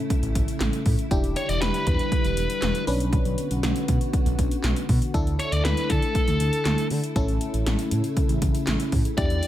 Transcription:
Already playing: string machine C#3 A3 E4, fm electric piano C#4 E4 A4
0.10 kick, closed hi-hat
0.23 analog synth bass A1, closed hi-hat
0.35 analog synth bass A1, kick, closed hi-hat
0.48 closed hi-hat
0.61 analog synth bass A1, snare, clap, closed hi-hat
0.73 closed hi-hat
0.86 analog synth bass A2, kick, open hi-hat
0.99 closed hi-hat
1.11 analog synth bass E1, string machine D3 G3, fm electric piano D4 E4 G4, kick, closed hi-hat
1.24 analog synth bass E1, closed hi-hat
1.36 lead electric guitar C#5, closed hi-hat
1.49 analog synth bass E1, lead electric guitar D5, closed hi-hat
1.61 analog synth bass E1, lead electric guitar B4, snare, closed hi-hat
1.74 closed hi-hat
1.87 analog synth bass E2, lead electric guitar B4, kick, closed hi-hat
1.99 closed hi-hat
2.12 kick, closed hi-hat
2.24 analog synth bass E1, closed hi-hat
2.37 analog synth bass E1, closed hi-hat
2.50 closed hi-hat
2.62 analog synth bass E1, snare, clap, closed hi-hat
2.75 closed hi-hat
2.87 analog synth bass B1, string machine D3 B3 F#4, fm electric piano C#4 D4 B4, open hi-hat
3.00 closed hi-hat
3.13 kick, closed hi-hat
3.25 analog synth bass B1, closed hi-hat
3.38 closed hi-hat
3.50 analog synth bass B1, closed hi-hat
3.63 analog synth bass B1, snare, closed hi-hat
3.76 closed hi-hat
3.88 analog synth bass B2, kick, closed hi-hat
4.01 closed hi-hat
4.13 kick, closed hi-hat
4.26 analog synth bass B1, closed hi-hat
4.39 analog synth bass B1, kick, closed hi-hat
4.51 closed hi-hat
4.64 analog synth bass B1, snare, clap, closed hi-hat
4.76 closed hi-hat
4.89 analog synth bass B2, kick, open hi-hat
5.02 closed hi-hat
5.14 analog synth bass D2, string machine D3 A3 E4, fm electric piano D4 E4 A4, kick, closed hi-hat
5.27 analog synth bass D2, closed hi-hat
5.39 lead electric guitar C#5, closed hi-hat
5.52 analog synth bass D2, lead electric guitar D5, closed hi-hat
5.65 analog synth bass D2, lead electric guitar B4, snare, closed hi-hat
5.77 closed hi-hat
5.90 analog synth bass D3, lead electric guitar A4, kick, closed hi-hat
6.02 closed hi-hat
6.15 kick, closed hi-hat
6.28 analog synth bass D2, closed hi-hat
6.40 analog synth bass D2, closed hi-hat
6.53 closed hi-hat
6.65 analog synth bass D2, snare, clap, closed hi-hat
6.78 closed hi-hat
6.90 analog synth bass D3, open hi-hat
7.04 closed hi-hat
7.16 analog synth bass A1, string machine C#3, fm electric piano C#4 E4 A4, kick, closed hi-hat
7.28 analog synth bass A1, closed hi-hat
7.41 closed hi-hat
7.54 analog synth bass A1, closed hi-hat
7.66 analog synth bass A1, snare, closed hi-hat
7.79 closed hi-hat
7.91 analog synth bass A2, closed hi-hat
8.04 closed hi-hat
8.17 kick, closed hi-hat
8.29 analog synth bass A1, closed hi-hat
8.42 analog synth bass A1, kick, closed hi-hat
8.55 closed hi-hat
8.67 analog synth bass A1, snare, clap, closed hi-hat
8.80 closed hi-hat
8.92 analog synth bass A2, kick, open hi-hat
9.05 closed hi-hat
9.18 analog synth bass E2, string machine D3 G3, fm electric piano D4 E4 G4, lead electric guitar D5, kick, closed hi-hat
9.30 analog synth bass E2, closed hi-hat
9.43 closed hi-hat

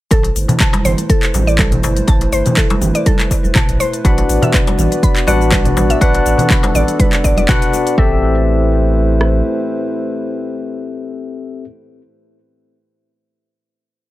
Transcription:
0.11 sub bass A1, analog synth pad A3 E4 B4 C5, synth pluck A4, kick, closed hi-hat, darbuka tek, shaker
0.23 closed hi-hat, muted conga, darbuka tek
0.36 sub bass G1, open hi-hat, shaker
0.48 closed hi-hat, darbuka dum, low conga, shaker
0.60 synth pluck A5, kick, clap, closed hi-hat, shaker
0.73 closed hi-hat, darbuka ka, darbuka tek, high conga
0.85 sub bass G1, synth pluck C5, open hi-hat, low conga, shaker
0.98 closed hi-hat, muted conga, shaker
1.10 synth pluck A4, kick, closed hi-hat, shaker
1.23 clap, closed hi-hat, shaker
1.34 sub bass A1, open hi-hat, darbuka ka, high conga, low conga, shaker
1.47 synth pluck D5, muted conga, shaker
1.59 synth pluck A4, kick, clap, closed hi-hat, high conga, darbuka tek, shaker
1.72 closed hi-hat, low conga, darbuka dum, shaker
1.83 sub bass G1, open hi-hat, muted conga, high conga, darbuka tek, shaker
1.97 closed hi-hat, high conga, shaker
2.08 sub bass A1, synth pluck A5, kick, closed hi-hat, darbuka tek, shaker
2.21 closed hi-hat, muted conga, darbuka tek
2.32 sub bass G1, synth pluck C5, open hi-hat, shaker
2.46 closed hi-hat, low conga, darbuka dum, shaker
2.57 synth pluck A4, kick, clap, closed hi-hat, shaker
2.70 closed hi-hat, darbuka ka, darbuka tek, high conga
2.81 sub bass G1, open hi-hat, low conga, shaker
2.95 synth pluck D5, closed hi-hat, muted conga, shaker
3.06 synth pluck A4, kick, closed hi-hat, high conga, shaker
3.20 clap, closed hi-hat, darbuka ka, shaker
3.31 kick, open hi-hat, darbuka ka, shaker
3.44 sub bass E1, muted conga, high conga, shaker
3.55 synth pluck A5, kick, clap, closed hi-hat, darbuka dum, shaker
3.69 sub bass A1, closed hi-hat, shaker
3.80 synth pluck C5, open hi-hat, muted conga, shaker
3.93 closed hi-hat, shaker
4.04 sub bass A1, analog synth pad B3 F#4 D5, tine electric piano D4 F#4 B4 F#5, synth pluck B4, kick, closed hi-hat, darbuka tek, shaker
4.18 closed hi-hat, muted conga, darbuka tek
4.29 sub bass A1, open hi-hat, shaker
4.42 synth pluck E5, closed hi-hat, darbuka dum, low conga, shaker
4.54 synth pluck B4, kick, clap, closed hi-hat, shaker
4.67 closed hi-hat, darbuka ka, high conga, darbuka tek
4.78 sub bass A1, open hi-hat, low conga, shaker
4.92 closed hi-hat, muted conga, shaker
5.03 synth pluck B5, kick, closed hi-hat, shaker
5.16 clap, closed hi-hat, shaker
5.27 sub bass A1, tine electric piano D4 F#4 B4 F#5, synth pluck D5, open hi-hat, darbuka ka, high conga, low conga, shaker
5.40 muted conga, shaker
5.51 synth pluck B4, kick, clap, closed hi-hat, high conga, darbuka tek, shaker
5.65 closed hi-hat, low conga, darbuka dum, shaker
5.77 sub bass A1, open hi-hat, muted conga, darbuka tek, high conga, shaker
5.90 synth pluck E5, closed hi-hat, high conga, shaker
6.01 sub bass A1, tine electric piano D4 F#4 B4 F#5, analog synth pad A4, synth pluck B4, kick, closed hi-hat, darbuka tek, shaker
6.13 closed hi-hat, muted conga, darbuka tek
6.26 sub bass A1, open hi-hat, shaker
6.38 closed hi-hat, darbuka dum, low conga, shaker
6.50 synth pluck B5, kick, clap, closed hi-hat, muted conga, shaker
6.63 closed hi-hat, darbuka ka, darbuka tek, high conga
6.74 sub bass A1, synth pluck D5, open hi-hat, low conga, shaker
6.88 closed hi-hat, muted conga, shaker
7.00 synth pluck B4, kick, closed hi-hat, high conga, shaker
7.13 clap, closed hi-hat, darbuka ka, shaker
7.24 sub bass A1, synth pluck D5, kick, open hi-hat, darbuka ka, shaker
7.37 sub bass E1, synth pluck D5, closed hi-hat, muted conga, high conga, shaker
7.48 tine electric piano D4 F#4 B4 F#5, synth pluck F#5, kick, clap, closed hi-hat, darbuka dum, shaker
7.62 closed hi-hat, shaker
7.73 open hi-hat, muted conga, shaker
7.87 closed hi-hat, shaker
7.97 sub bass A1, analog synth pad A3 E4 B4 C5, tine electric piano C4 G4 A4 E5, synth pluck A4, kick
9.21 cross-stick

